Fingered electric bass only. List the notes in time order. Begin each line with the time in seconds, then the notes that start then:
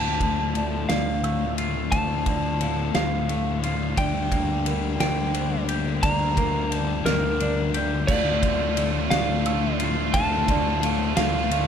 Already playing: D2
0.89 D2
1.92 D2
2.95 D2
3.97 D2
5.00 D2
6.03 D2
7.05 D2
8.09 D2
9.11 D2
10.14 D2
11.17 D2